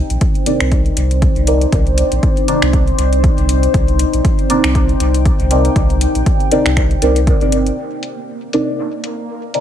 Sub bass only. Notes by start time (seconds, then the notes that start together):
0.10 A#1
0.61 C2
0.97 C2
1.36 C2
1.73 C2
2.12 A#1
2.62 C2
2.99 C2
3.38 C2
3.74 C2
4.14 A#1
4.64 C2
5.00 C2
5.40 C2
5.76 C2
6.15 A#1
6.66 C2
7.02 C2
7.41 G1